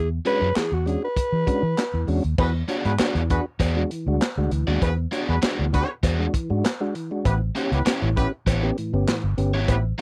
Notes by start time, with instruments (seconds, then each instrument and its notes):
Already playing: fingered electric bass E2, tonewheel organ E3
0.25 tonewheel organ G#3 C#4 D4 F#4, overdriven electric guitar D4 F#4 G#4 C#5, alto saxophone B4, closed hi-hat
0.41 fingered electric bass F#2, tonewheel organ D4 F#4
0.56 tonewheel organ E3, alto saxophone G#4, muted fingered electric bass stroke, snare, clap, closed hi-hat
0.72 fingered electric bass E2, alto saxophone F#4
0.86 tonewheel organ G#3 C#4 D4 F#4, alto saxophone G#4, closed hi-hat
1.02 tonewheel organ D4 F#4, alto saxophone B4
1.16 kick, closed hi-hat
1.32 fingered electric bass E3
1.46 tonewheel organ G#3 C#4 D4 F#4, kick, closed hi-hat
1.63 fingered electric bass E3
1.77 tonewheel organ D4 F#4, snare, clap, closed hi-hat
1.94 fingered electric bass E2, tonewheel organ E3
2.07 fingered electric bass E2, tonewheel organ G#3 C#4 D4 F#4, open hi-hat
2.24 fingered electric bass D#2, closed hi-hat
2.38 fingered electric bass E2, tonewheel organ E3, horn section B3 F#4 G#4 B4, kick, crash, cowbell
2.68 overdriven electric guitar B3 F#4 G#4 D5, tonewheel organ D4 F#4, closed hi-hat
2.85 fingered electric bass G#2, horn section B3 F#4 G#4 B4, closed hi-hat
2.99 overdriven electric guitar B3 F#4 G#4 D5, tonewheel organ D4 F#4, muted fingered electric bass stroke, snare, clap, closed hi-hat, cowbell
3.15 fingered electric bass E2, tonewheel organ E3, closed hi-hat
3.30 horn section B3 F#4 G#4 B4, tonewheel organ D4 F#4, kick, closed hi-hat
3.59 fingered electric bass E2, overdriven electric guitar B3 F#4 G#4 D5, kick, closed hi-hat, cowbell
3.76 tonewheel organ G#3 D4 F#4
3.91 tonewheel organ E3, closed hi-hat
4.06 fingered electric bass D2, tonewheel organ G#3 D4 F#4
4.21 snare, clap, closed hi-hat, cowbell
4.37 fingered electric bass D2, tonewheel organ G#3 D4 F#4
4.51 fingered electric bass D2, tonewheel organ E3, closed hi-hat
4.67 fingered electric bass D#2, tonewheel organ G#3 D4 F#4, overdriven electric guitar B3 F#4 G#4 D5
4.82 fingered electric bass E2, tonewheel organ E3, horn section B3 F#4 G#4 B4, kick, closed hi-hat, cowbell
5.12 overdriven electric guitar B3 F#4 G#4 D5, tonewheel organ D4 F#4, closed hi-hat
5.29 fingered electric bass E2, horn section B3 F#4 G#4 B4
5.42 overdriven electric guitar B3 F#4 G#4 D5, tonewheel organ D4 F#4, muted fingered electric bass stroke, snare, clap, closed hi-hat, cowbell
5.59 fingered electric bass D2, tonewheel organ E3
5.73 horn section B3 F#4 G#4 B4, tonewheel organ D4 F#4, kick, closed hi-hat
6.03 fingered electric bass E2, overdriven electric guitar B3 F#4 G#4 D5, kick, closed hi-hat, cowbell
6.19 tonewheel organ G#3 D4 F#4
6.34 tonewheel organ E3, kick, closed hi-hat
6.50 fingered electric bass G#2, tonewheel organ G#3 D4 F#4
6.64 snare, clap, closed hi-hat, cowbell
6.80 tonewheel organ G#3 D4 F#4
6.95 tonewheel organ E3, closed hi-hat
7.11 tonewheel organ G#3 D4 F#4
7.25 fingered electric bass A1, tonewheel organ A2 E3, horn section B3 E4 G4 B4, kick, closed hi-hat, cowbell
7.55 overdriven electric guitar B3 E4 G4 C#5, tonewheel organ C#4 G4, closed hi-hat
7.72 fingered electric bass C#2, horn section B3 E4 G4 B4, closed hi-hat
7.85 overdriven electric guitar B3 E4 G4 C#5, tonewheel organ C#4 G4, muted fingered electric bass stroke, snare, clap, closed hi-hat, cowbell
8.02 fingered electric bass A1, tonewheel organ A2 E3
8.16 horn section B3 E4 G4 B4, tonewheel organ C#4 G4, kick, closed hi-hat
8.46 fingered electric bass A1, overdriven electric guitar B3 E4 G4 C#5, kick, closed hi-hat, cowbell
8.63 tonewheel organ B3 C#4 G4
8.78 tonewheel organ A2 E3, closed hi-hat
8.93 fingered electric bass G1, tonewheel organ B3 C#4 G4
9.07 tonewheel organ A2 E3, snare, clap, closed hi-hat, cowbell
9.24 fingered electric bass G1
9.37 fingered electric bass G1, tonewheel organ B3 C#4 G4, closed hi-hat
9.54 fingered electric bass G#1, overdriven electric guitar B3 E4 G4 C#5, tonewheel organ C#4 G4
9.68 fingered electric bass A1, tonewheel organ A2 E3, horn section B3 E4 G4 B4, kick, closed hi-hat, cowbell